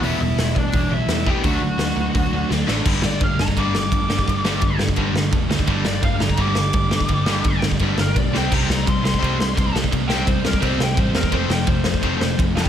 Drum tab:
CC |----------------|----------------|x---------------|----------------|
RD |----------------|----------------|----x---x---x---|x---x---x---x---|
HH |o---o---o---o---|o---o---o-------|----------------|----------------|
SD |----o-------o---|----o-------o-o-|--o---o---o---o-|--o---o---o---o-|
BD |------o-o-----o-|o-------o-------|o---o--oo---o--o|o---o--oo---o--o|

CC |----------------|----------------|x---------------|----------------|
RD |x---x---x---x---|x---x---x---x---|----x---x---x---|x---x---x---x---|
HH |----------------|----------------|----------------|----------------|
SD |--o---o---o---o-|--o---o---o---o-|--o---o---o---o-|--o---o---o---o-|
BD |o---o--oo---o--o|o---o--oo---o---|o---o--oo---o--o|o---o--oo---o--o|

CC |----------------|
RD |x---x---x---x---|
HH |----------------|
SD |--o---o---o---o-|
BD |o---o--oo---o--o|